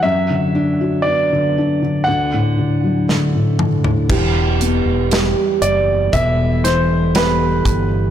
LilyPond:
<<
  \new Staff \with { instrumentName = "Grand piano" } { \time 4/4 \key e \minor \tempo 4 = 59 e''4 d''4 fis''4 r4 | r4. d''8 e''8 c''8 b'8. r16 | }
  \new Staff \with { instrumentName = "Nylon-string guitar" } { \time 4/4 \key e \minor fis8 d'8 b4 d4 a4 | <e, g'>8 b8 <g g'>8 g8 e4 <g b g'>4 | }
  \new Staff \with { instrumentName = "French horn section" } { \clef bass \time 4/4 \key e \minor << { r1 | g'2 a'2 | } \\ { r1 | <b, e g>1 | } >> }
  \new Staff \with { instrumentName = "Felt piano" } { \clef bass \time 4/4 \key e \minor fis,16 d16 d'16 fis'16 d'16 d16 d'16 d16 d,16 a,16 d16 fis16 d16 a,16 d16 a,16 | e8 b8 g'4 b,8 e8 b4 | }
  \new Staff \with { instrumentName = "Fretless electric bass" } { \clef bass \time 4/4 \key e \minor r1 | e,,8. e,,8 r16 fis,,8 r4. g,,8 | }
  \new DrumStaff \with { instrumentName = "Drums" } \drummode { \time 4/4 r4 r4 r4 sn8 toml16 tomfh16 | <cymc bd>8 hh8 <hh sn>8 hh8 <hh bd>8 <hh sn>8 <hh sn>8 <hh bd>8 | }
>>